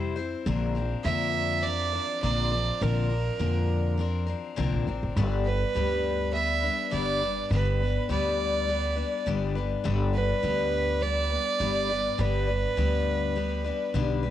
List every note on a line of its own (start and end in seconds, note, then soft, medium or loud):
0.00 0.33 F2 medium
0.00 0.16 C3 medium
0.00 0.17 G3 medium
0.00 0.17 C4 medium
0.00 0.16 E4 medium
0.00 0.14 C5 medium
0.16 0.46 C4 soft
0.16 0.47 E4 medium
0.16 0.46 C5 medium
0.46 0.93 A#1 loud
0.46 0.76 A#2 medium
0.46 0.76 D3 medium
0.46 0.76 F3 medium
0.46 0.76 C4 medium
0.46 0.75 D4 loud
0.46 0.74 A#4 medium
0.75 1.04 F3 soft
0.75 1.05 C4 soft
0.75 1.05 D4 medium
0.75 1.05 A#4 medium
1.04 1.97 F2 medium
1.04 1.64 A#2 medium
1.04 1.64 D3 medium
1.04 1.62 F3 medium
1.04 1.63 C4 medium
1.04 1.65 D4 medium
1.04 1.65 A#4 medium
1.04 1.64 E5 loud
1.63 1.93 F3 medium
1.63 1.94 C4 medium
1.63 1.93 D4 medium
1.63 1.92 A#4 medium
1.63 2.22 D5 loud
1.93 2.22 F3 soft
1.93 2.22 C4 soft
1.93 2.23 D4 soft
1.93 2.23 A#4 medium
2.22 2.69 A#1 medium
2.22 2.52 A#2 medium
2.22 2.52 D3 medium
2.22 2.52 F3 medium
2.22 2.53 C4 medium
2.22 2.51 D4 medium
2.22 2.50 A#4 medium
2.22 2.84 D5 medium
2.51 2.81 F3 soft
2.51 2.81 C4 soft
2.51 2.82 D4 medium
2.51 2.81 A#4 medium
2.81 3.28 A#1 medium
2.81 3.11 A#2 medium
2.81 3.11 D3 medium
2.81 3.11 F3 medium
2.81 3.11 C4 medium
2.81 3.09 D4 medium
2.81 3.99 A#4 medium
2.81 3.08 A#4 medium
3.10 3.39 F3 soft
3.10 3.39 C4 soft
3.10 3.40 D4 soft
3.10 3.40 A#4 soft
3.39 4.32 F2 medium
3.39 3.99 A#2 medium
3.39 3.99 D3 medium
3.39 3.97 F3 medium
3.39 3.98 C4 medium
3.39 4.00 D4 medium
3.39 4.00 A#4 medium
3.98 4.28 F3 medium
3.98 4.27 C4 medium
3.98 4.27 D4 medium
3.98 4.25 A#4 medium
4.27 4.56 F3 soft
4.27 4.57 C4 soft
4.27 4.57 D4 medium
4.27 4.57 A#4 medium
4.56 4.71 C2 medium
4.56 4.87 A#2 medium
4.56 4.87 D3 medium
4.56 4.87 F3 medium
4.56 4.87 C4 medium
4.56 4.87 D4 medium
4.56 4.86 A#4 loud
4.73 4.86 A#1 medium
4.87 5.00 A1 medium
4.87 5.17 F3 soft
4.87 5.17 C4 medium
4.87 5.17 D4 medium
4.87 5.16 A#4 medium
5.03 5.16 G1 medium
5.16 5.62 G1 loud
5.16 5.46 G2 medium
5.16 5.46 D3 medium
5.16 5.46 G3 medium
5.16 5.47 B3 loud
5.16 5.46 D4 medium
5.16 5.45 B4 loud
5.45 5.74 G3 soft
5.45 5.75 B3 soft
5.45 5.75 D4 soft
5.45 6.30 B4 medium
5.45 5.75 B4 soft
5.75 6.67 D2 medium
5.75 6.34 G2 medium
5.75 6.34 D3 medium
5.75 6.33 G3 medium
5.75 6.33 B3 medium
5.75 6.35 D4 medium
5.75 6.35 B4 medium
6.33 6.63 G3 medium
6.33 6.63 B3 medium
6.33 6.62 D4 medium
6.33 6.61 B4 medium
6.33 6.88 E5 loud
6.62 6.91 G3 soft
6.62 6.92 B3 soft
6.62 6.92 D4 soft
6.62 6.92 B4 soft
6.91 7.39 G1 medium
6.91 7.21 G2 medium
6.91 7.21 D3 medium
6.91 7.21 G3 medium
6.91 7.22 B3 medium
6.91 7.21 D4 medium
6.91 7.19 B4 medium
6.91 7.47 D5 loud
7.21 7.51 G3 soft
7.21 7.51 B3 soft
7.21 7.51 D4 medium
7.21 7.50 B4 medium
7.50 7.97 G1 loud
7.50 7.80 G2 medium
7.50 7.81 D3 medium
7.50 7.81 G3 medium
7.50 7.81 B3 medium
7.50 7.80 D4 medium
7.50 8.06 B4 medium
7.50 7.79 B4 medium
7.81 8.09 G3 soft
7.81 8.10 B3 soft
7.81 8.10 D4 soft
7.81 8.10 B4 soft
8.09 9.01 D2 medium
8.09 8.68 G2 medium
8.09 8.68 D3 medium
8.09 8.67 G3 medium
8.09 8.67 B3 medium
8.09 8.69 D4 medium
8.09 8.69 B4 medium
8.09 9.23 D5 medium
8.67 8.97 G3 medium
8.67 8.97 B3 medium
8.67 8.96 D4 medium
8.67 8.95 B4 medium
8.96 9.26 G3 soft
8.96 9.26 B3 medium
8.96 9.26 D4 medium
8.96 9.26 B4 medium
9.26 9.72 G1 medium
9.26 9.56 G2 medium
9.26 9.56 D3 medium
9.26 9.56 G3 medium
9.26 9.56 B3 medium
9.26 9.55 D4 medium
9.26 9.54 B4 medium
9.55 9.84 G3 soft
9.55 9.84 B3 soft
9.55 9.84 D4 medium
9.55 9.85 B4 medium
9.84 10.31 G1 loud
9.84 10.14 G2 medium
9.84 10.14 D3 medium
9.84 10.14 G3 medium
9.84 10.14 B3 medium
9.84 10.13 D4 loud
9.84 10.12 B4 medium
10.13 10.42 G3 soft
10.13 10.43 B3 soft
10.13 10.43 D4 soft
10.13 10.43 B4 soft
10.13 11.04 B4 loud
10.42 11.35 D2 medium
10.42 11.02 G2 medium
10.42 11.02 D3 medium
10.42 11.00 G3 medium
10.42 11.01 B3 medium
10.42 11.03 D4 medium
10.42 11.03 B4 medium
11.01 11.31 G3 medium
11.01 11.31 B3 medium
11.01 11.30 D4 medium
11.01 11.29 B4 medium
11.01 12.22 D5 loud
11.30 11.59 G3 soft
11.30 11.60 B3 soft
11.30 11.60 D4 soft
11.30 11.60 B4 soft
11.60 12.06 G1 medium
11.60 11.89 G2 medium
11.60 11.90 D3 medium
11.60 11.90 G3 medium
11.60 11.89 B3 medium
11.60 11.88 D4 medium
11.60 11.87 B4 medium
11.88 12.18 G3 medium
11.88 12.18 B3 medium
11.88 12.19 D4 medium
11.88 12.18 B4 medium
12.18 12.65 G1 loud
12.18 12.48 G2 medium
12.18 12.48 D3 medium
12.18 12.48 G3 medium
12.18 12.48 B3 medium
12.18 12.47 D4 medium
12.18 12.46 B4 medium
12.18 13.95 B4 medium
12.47 12.76 G3 soft
12.47 12.77 B3 soft
12.47 12.77 D4 soft
12.47 12.77 B4 soft
12.77 13.69 D2 medium
12.77 13.36 G2 medium
12.77 13.36 D3 medium
12.77 13.34 G3 medium
12.77 13.35 B3 medium
12.77 13.36 D4 medium
12.77 13.37 B4 medium
13.35 13.65 G3 medium
13.35 13.65 B3 medium
13.35 13.64 D4 medium
13.35 13.63 B4 medium
13.64 13.94 G3 soft
13.64 13.94 B3 medium
13.64 13.94 D4 medium
13.64 13.94 B4 medium
13.94 14.30 B1 medium
13.94 14.23 G2 medium
13.94 14.23 D3 medium
13.94 14.24 G3 medium
13.94 14.23 B3 medium
13.94 14.23 D4 loud
13.94 14.22 B4 medium
14.23 14.30 G3 soft
14.23 14.30 B3 medium
14.23 14.30 D4 medium
14.23 14.30 B4 medium